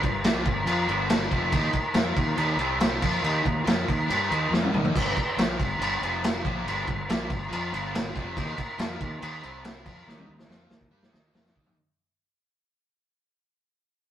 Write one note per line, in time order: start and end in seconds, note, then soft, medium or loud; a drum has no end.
0.00 0.20 G2 medium
0.00 0.20 D3 medium
0.00 1.51 D4 medium
0.00 1.52 G4 medium
0.00 1.51 A#4 medium
0.00 kick medium
0.00 crash medium
0.04 0.24 G1 medium
0.24 0.45 A#1 medium
0.24 0.45 A#2 medium
0.24 0.46 F3 loud
0.24 0.46 A#3 loud
0.24 snare loud
0.24 crash medium
0.45 0.65 G1 medium
0.45 0.63 G2 medium
0.45 0.63 D3 medium
0.45 kick medium
0.45 crash medium
0.65 0.86 F2 loud
0.65 0.87 F3 loud
0.65 0.88 C4 medium
0.65 0.88 F4 loud
0.65 crash medium
0.87 1.28 G1 loud
0.87 1.30 G2 loud
0.87 1.30 D3 loud
0.87 1.31 G3 loud
0.87 crash medium
1.09 snare loud
1.09 crash loud
1.30 1.52 F1 loud
1.30 1.52 F2 medium
1.30 1.51 C3 loud
1.30 1.52 F3 loud
1.30 kick medium
1.30 crash medium
1.51 1.73 D#2 loud
1.51 1.73 D#3 loud
1.51 2.58 A#3 medium
1.51 1.73 A#3 medium
1.51 1.74 D#4 loud
1.51 2.59 D#4 medium
1.51 2.58 A#4 medium
1.51 kick loud
1.51 crash medium
1.73 muted fingered electric bass stroke soft
1.73 muted distorted electric guitar stroke medium
1.73 kick medium
1.73 crash medium
1.94 2.15 F2 medium
1.94 2.14 F3 medium
1.94 2.15 C4 medium
1.94 2.16 F4 loud
1.94 snare loud
1.94 crash medium
2.15 2.37 D#2 medium
2.15 2.33 D#3 medium
2.15 2.33 A#3 medium
2.15 kick medium
2.15 crash medium
2.36 2.56 D#2 loud
2.36 2.58 D#3 loud
2.36 2.58 A#3 medium
2.36 2.59 D#4 loud
2.36 crash medium
2.56 2.98 C2 loud
2.56 3.01 C3 medium
2.56 3.00 G3 loud
2.56 3.00 C4 loud
2.56 crash medium
2.61 3.03 C4 medium
2.61 3.03 G4 medium
2.61 3.02 C5 medium
2.80 snare loud
2.80 crash medium
3.00 3.22 F2 medium
3.00 3.22 F3 loud
3.00 4.92 A#3 medium
3.00 3.22 C4 medium
3.00 4.92 D#4 medium
3.00 3.23 F4 loud
3.00 4.92 A#4 medium
3.00 kick loud
3.00 crash loud
3.22 3.43 D#2 loud
3.22 3.42 D#3 medium
3.22 3.43 A#3 loud
3.22 3.44 D#4 loud
3.22 crash medium
3.44 3.65 D#2 medium
3.44 3.62 D#3 medium
3.44 3.62 A#3 medium
3.44 kick medium
3.44 crash medium
3.65 3.87 F2 medium
3.65 3.86 F3 medium
3.65 3.87 C4 loud
3.65 3.87 F4 loud
3.65 snare loud
3.65 crash medium
3.87 4.08 D#2 medium
3.87 4.04 D#3 medium
3.87 4.05 A#3 medium
3.87 kick medium
3.87 crash medium
4.08 4.30 G2 medium
4.08 4.29 G3 medium
4.08 4.30 D4 loud
4.08 4.30 G4 loud
4.08 crash medium
4.29 4.50 D#2 loud
4.29 4.50 D#3 medium
4.29 4.51 A#3 loud
4.29 4.51 D#4 loud
4.29 crash medium
4.51 4.71 F2 medium
4.51 4.71 F3 loud
4.51 4.71 C4 loud
4.51 4.72 F4 loud
4.51 snare medium
4.63 high tom medium
4.71 4.93 D#2 medium
4.71 4.93 D#3 medium
4.71 4.93 A#3 loud
4.71 4.94 D#4 loud
4.71 mid tom medium
4.85 floor tom medium
4.93 5.15 G1 loud
4.93 5.13 G2 medium
4.93 5.15 D3 medium
4.93 5.15 G3 loud
4.93 kick loud
4.93 crash loud
4.93 crash medium
5.14 muted distorted electric guitar stroke medium
5.14 muted fingered electric bass stroke soft
5.14 kick medium
5.14 crash medium
5.36 5.57 A#1 medium
5.36 5.57 A#2 loud
5.36 5.58 F3 loud
5.36 5.58 A#3 loud
5.36 snare loud
5.36 crash medium
5.59 5.78 G1 medium
5.59 5.76 G2 medium
5.59 5.76 D3 medium
5.59 kick medium
5.59 crash medium
5.78 5.99 G1 medium
5.78 6.00 G2 loud
5.78 6.00 D3 medium
5.78 6.01 G3 loud
5.78 crash medium
6.01 6.41 F1 loud
6.01 6.43 F2 loud
6.01 6.43 C3 medium
6.01 6.43 F3 loud
6.01 crash medium
6.24 snare loud
6.24 crash medium
6.44 6.64 A#1 medium
6.44 6.64 A#2 loud
6.44 6.65 F3 loud
6.44 6.65 A#3 loud
6.44 kick loud
6.44 crash medium
6.65 6.85 G1 loud
6.65 6.86 G2 medium
6.65 6.86 D3 loud
6.65 6.86 G3 loud
6.65 crash medium
6.87 7.07 G1 medium
6.87 7.04 G2 medium
6.87 7.04 D3 medium
6.87 kick medium
6.87 crash medium
7.09 7.28 A#1 medium
7.09 7.29 A#2 medium
7.09 7.29 F3 loud
7.09 7.30 A#3 loud
7.09 snare loud
7.09 crash medium
7.29 7.50 G1 medium
7.29 7.46 G2 medium
7.29 7.46 D3 medium
7.29 kick medium
7.29 crash medium
7.49 7.71 F2 loud
7.49 7.70 F3 loud
7.49 7.71 C4 loud
7.49 7.71 F4 loud
7.49 crash medium
7.71 8.12 G1 loud
7.71 8.13 G2 loud
7.71 8.13 D3 loud
7.71 8.14 G3 loud
7.71 crash medium
7.95 snare loud
7.95 crash loud
8.15 8.35 F1 medium
8.15 8.35 F2 loud
8.15 8.35 C3 loud
8.15 8.36 F3 loud
8.15 kick medium
8.15 crash medium
8.36 8.56 D#2 loud
8.36 8.56 D#3 loud
8.36 8.56 A#3 loud
8.36 8.50 B3 medium
8.36 8.57 D#4 loud
8.36 8.50 E4 medium
8.36 8.51 B4 medium
8.36 kick loud
8.36 crash medium
8.51 9.42 A#3 medium
8.51 9.42 D#4 medium
8.51 9.42 A#4 medium
8.58 muted distorted electric guitar stroke medium
8.58 muted fingered electric bass stroke soft
8.58 kick medium
8.58 crash medium
8.78 8.98 F2 loud
8.78 8.99 F3 loud
8.78 8.99 C4 loud
8.78 8.99 F4 loud
8.78 snare loud
8.78 crash medium
9.00 9.20 D#2 medium
9.00 9.17 D#3 medium
9.00 9.17 A#3 medium
9.00 kick loud
9.00 crash medium
9.21 9.41 D#2 loud
9.21 9.42 D#3 medium
9.21 9.42 A#3 loud
9.21 9.42 D#4 loud
9.21 crash medium
9.41 9.83 C2 loud
9.41 9.84 C3 medium
9.41 9.85 G3 loud
9.41 9.84 C4 medium
9.41 9.84 C4 loud
9.41 9.84 G4 medium
9.41 9.84 C5 medium
9.41 crash medium
9.65 snare loud
9.65 crash medium
9.85 10.05 F2 medium
9.85 10.05 F3 loud
9.85 11.75 A#3 medium
9.85 10.06 C4 loud
9.85 11.75 D#4 medium
9.85 10.06 F4 loud
9.85 11.76 A#4 medium
9.85 kick loud
9.85 crash loud
10.06 10.26 D#2 loud
10.06 10.27 D#3 loud
10.06 10.27 A#3 loud
10.06 10.28 D#4 loud
10.06 snare medium
10.18 high tom medium
10.28 10.48 D#2 medium
10.28 10.45 D#3 medium
10.28 10.45 A#3 medium
10.39 snare medium
10.48 10.69 F2 medium
10.48 10.68 F3 medium
10.48 10.69 C4 loud
10.48 10.70 F4 loud
10.48 snare medium
10.69 10.90 D#2 medium
10.69 10.86 D#3 medium
10.69 10.87 A#3 medium
10.69 snare medium
10.81 kick medium
10.91 11.11 G2 medium
10.91 11.10 G3 loud
10.91 11.11 D4 loud
10.91 11.12 G4 loud
11.02 snare medium
11.10 11.33 D#2 loud
11.10 11.32 D#3 medium
11.10 11.32 A#3 medium
11.10 11.33 D#4 loud
11.10 snare medium
11.33 11.54 F2 loud
11.33 11.52 F3 medium
11.33 11.54 C4 loud
11.33 11.54 F4 loud
11.33 snare loud
11.45 snare medium
11.53 11.76 D#2 medium
11.53 11.74 D#3 loud
11.53 11.75 A#3 medium
11.53 11.76 D#4 loud
11.53 kick loud
11.66 floor tom medium